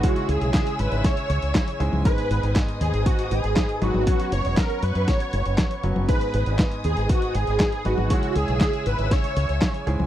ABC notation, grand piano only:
X:1
M:4/4
L:1/8
Q:1/4=119
K:G#m
V:1 name="Grand piano"
[C,G,CEG]6- [C,G,CEG] [G,,G,CEG] | [G,,B,DGB]6- [G,,B,DGB] [F,B,DGB] | [F,B,CF]6- [F,B,CF] [F,B,CF] | [G,,B,DGB]6- [G,,B,DGB] [B,DGB] |
[C,G,CEG]6- [C,G,CEG] [G,,G,CEG] |]